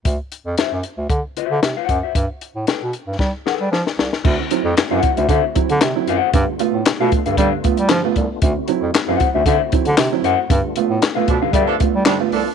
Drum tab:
CC |----------------|----------------|x---------------|----------------|
HH |x-x-x-x-x-x-x-x-|x-x-x-x---------|--x-x-xxx-xxx-x-|x-x-x-xxx-xxx-x-|
CP |----------------|----------------|----x-------x---|----x-------x---|
SD |----o-------o---|----o---o-o-oooo|----o-------o---|----o-------o---|
BD |o-------o-----o-|o-------o-------|o-----o-o-o-----|o-----o-o-o---o-|

CC |----------------|----------------|
HH |x-x-x-x-x-xxx-x-|x-x-x-x-x-x-x-o-|
CP |----x-------x---|----x-------x---|
SD |----o-------o---|----o-------o---|
BD |o-----o-o-o-----|o-----o-o-o-----|